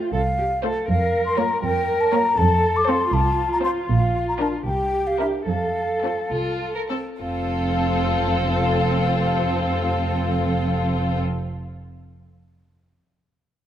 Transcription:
0.00 0.11 F4 medium
0.12 0.72 C2 medium
0.12 0.20 A4 medium
0.12 0.59 F5 medium
0.37 0.45 G4 medium
0.63 0.81 A3 medium
0.63 0.81 F4 soft
0.63 0.87 A4 soft
0.63 0.81 C5 medium
0.88 1.47 F2 medium
0.88 1.61 A#4 medium
0.88 1.24 F5 medium
1.26 1.39 C6 medium
1.37 1.56 A#3 soft
1.37 1.56 F4 soft
1.37 1.56 C#5 medium
1.37 1.62 A#5 medium
1.63 2.23 F2 medium
1.63 2.36 A#4 medium
1.63 2.02 G5 medium
2.01 2.14 A5 medium
2.12 2.32 A#3 soft
2.12 2.31 F4 soft
2.12 2.31 C#5 medium
2.12 2.39 A#5 medium
2.37 2.98 F2 medium
2.37 3.11 A4 medium
2.37 2.78 A5 medium
2.76 2.90 D6 medium
2.87 3.07 C4 medium
2.87 3.07 F4 soft
2.87 3.06 C5 soft
2.87 3.15 C6 medium
3.13 3.73 C2 medium
3.13 4.63 F4 medium
3.13 3.51 A5 medium
3.52 3.58 A#5 medium
3.63 3.82 C4 soft
3.63 3.83 F4 soft
3.63 3.82 C5 medium
3.63 3.71 C6 medium
3.89 4.51 A#1 medium
3.89 4.27 F5 medium
4.29 4.34 A#5 medium
4.40 4.60 D4 soft
4.40 4.60 F4 soft
4.40 4.59 A#4 soft
4.40 4.47 A5 medium
4.66 5.31 C2 soft
4.66 5.46 G4 medium
4.66 5.09 G5 medium
5.07 5.20 F5 soft
5.20 5.40 D4 soft
5.20 5.41 E4 soft
5.20 5.41 A#4 soft
5.20 5.26 E5 soft
5.47 6.15 F2 soft
5.47 6.73 A4 soft
5.47 6.31 F5 soft
6.04 6.25 C4 soft
6.04 6.25 F4 soft
6.04 6.25 A4 soft
6.32 7.03 C2 soft
6.32 6.73 F4 soft
6.76 6.82 A#4 soft
6.90 7.13 C4 soft
6.90 6.98 A4 soft
6.90 7.13 A4 soft
7.20 11.18 F1 soft
7.20 11.18 F2 soft
7.20 11.18 C4 soft
7.20 11.19 F4 soft
7.20 11.19 A4 soft
7.20 11.19 F5 soft

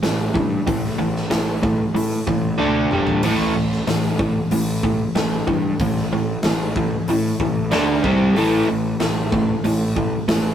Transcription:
0.03 0.27 A1 medium
0.03 0.32 A2 medium
0.03 0.32 E3 medium
0.03 snare loud
0.03 open hi-hat medium
0.35 0.60 G2 medium
0.35 0.64 A2 medium
0.35 0.64 E3 medium
0.35 kick medium
0.67 0.91 A1 loud
0.67 0.96 A2 medium
0.67 0.96 E3 medium
0.67 kick loud
0.67 open hi-hat medium
0.84 snare soft
0.98 1.24 A1 medium
0.98 1.28 A2 medium
0.98 1.28 E3 medium
1.16 snare soft
1.30 1.80 A1 medium
1.30 1.60 A2 medium
1.30 1.60 E3 loud
1.30 snare loud
1.30 open hi-hat medium
1.63 1.92 A2 medium
1.63 1.92 E3 medium
1.63 kick loud
1.95 2.24 A2 medium
1.95 2.19 A2 medium
1.95 2.24 E3 medium
1.95 open hi-hat medium
2.27 2.52 A1 medium
2.27 2.56 A2 medium
2.27 2.57 E3 medium
2.27 kick medium
2.58 2.84 D2 medium
2.58 2.89 D3 medium
2.58 2.89 A3 medium
2.58 2.90 D4 medium
2.58 high tom medium
2.91 3.16 G1 medium
2.91 3.22 G2 medium
2.91 3.22 D3 medium
2.91 3.22 G3 loud
2.91 mid tom medium
3.07 floor tom medium
3.23 3.47 A1 medium
3.23 3.54 A2 medium
3.23 3.54 E3 medium
3.23 3.55 A3 loud
3.23 open hi-hat medium
3.23 crash medium
3.55 3.80 A1 medium
3.55 3.84 A2 medium
3.55 3.84 E3 medium
3.72 snare soft
3.87 4.36 A1 medium
3.87 4.17 A2 medium
3.87 4.17 E3 medium
3.87 snare loud
3.87 open hi-hat medium
4.19 4.48 A2 medium
4.19 4.49 E3 medium
4.19 kick loud
4.51 4.99 A1 medium
4.51 4.81 A2 medium
4.51 4.81 E3 medium
4.51 open hi-hat medium
4.83 5.13 A2 medium
4.83 5.13 E3 medium
4.83 kick medium
5.15 5.40 A1 medium
5.15 5.45 A2 medium
5.15 5.45 E3 medium
5.15 snare loud
5.15 open hi-hat medium
5.47 5.72 G2 medium
5.47 5.77 A2 medium
5.47 5.77 E3 medium
5.47 kick medium
5.80 6.04 A1 medium
5.80 6.09 A2 medium
5.80 6.10 E3 medium
5.80 kick loud
5.80 open hi-hat medium
5.96 snare soft
6.12 6.36 A1 medium
6.12 6.42 A2 medium
6.12 6.41 E3 medium
6.43 6.92 A1 medium
6.43 6.74 A2 medium
6.43 6.74 E3 medium
6.43 snare loud
6.43 open hi-hat medium
6.76 7.06 A2 medium
6.76 7.06 E3 medium
6.76 kick medium
7.08 7.32 A2 loud
7.08 7.38 A2 medium
7.08 7.38 E3 medium
7.08 open hi-hat medium
7.40 7.73 A1 medium
7.40 7.69 A2 medium
7.40 7.69 E3 medium
7.40 kick medium
7.71 7.97 D2 medium
7.71 8.02 D3 medium
7.71 8.03 A3 loud
7.71 8.03 D4 loud
7.71 snare loud
7.71 open hi-hat medium
8.03 8.28 C2 medium
8.03 8.34 C3 loud
8.03 8.35 G3 loud
8.03 8.35 C4 loud
8.03 kick loud
8.36 8.61 A1 loud
8.36 8.66 A2 medium
8.36 8.67 E3 loud
8.36 8.67 A3 loud
8.36 open hi-hat medium
8.68 8.94 A1 medium
8.68 8.97 A2 medium
8.68 8.98 E3 medium
9.00 9.50 A1 medium
9.00 9.29 A2 medium
9.00 9.30 E3 medium
9.00 snare loud
9.00 open hi-hat medium
9.32 9.61 A2 medium
9.32 9.62 E3 medium
9.32 kick loud
9.64 10.13 A1 loud
9.64 9.93 A2 medium
9.64 9.94 E3 medium
9.64 open hi-hat medium
9.97 10.26 A2 medium
9.97 10.26 E3 medium
9.97 kick medium
10.28 10.53 A1 medium
10.28 10.54 A2 medium
10.28 10.54 E3 medium
10.28 snare loud
10.28 open hi-hat medium

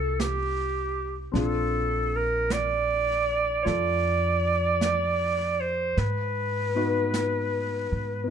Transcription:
0.00 1.30 C2 medium
0.00 1.30 C4 soft
0.00 1.34 D#4 soft
0.00 1.34 F4 soft
0.00 1.35 G4 soft
0.00 0.22 A4 medium
0.00 1.36 A4 soft
0.20 1.17 G4 medium
0.20 brush sweep soft
0.20 snare soft
0.20 hi-hat pedal soft
1.32 3.61 A#1 medium
1.32 5.95 C4 soft
1.32 5.96 D4 soft
1.32 3.63 F4 soft
1.32 brush sweep soft
1.32 snare soft
1.36 2.17 A4 medium
2.16 2.54 A#4 medium
2.50 3.62 D5 medium
2.50 brush sweep soft
2.50 snare soft
2.50 hi-hat pedal soft
3.63 5.93 F2 medium
3.63 5.96 F4 soft
3.63 5.97 A4 soft
3.63 3.66 C#5 medium
3.63 5.62 D5 medium
3.63 brush sweep soft
3.63 snare soft
4.81 brush sweep soft
4.81 snare soft
4.81 hi-hat pedal soft
5.60 6.00 C5 medium
5.97 7.87 G#2 medium
5.97 8.30 B4 medium
5.97 brush sweep soft
5.97 snare soft
6.75 8.22 B3 soft
6.75 8.26 D#4 soft
6.75 8.29 F#4 soft
6.75 8.29 B4 medium
7.14 brush sweep soft
7.14 snare soft
7.14 hi-hat pedal soft
7.92 8.26 G#2 medium
8.24 8.30 B3 soft

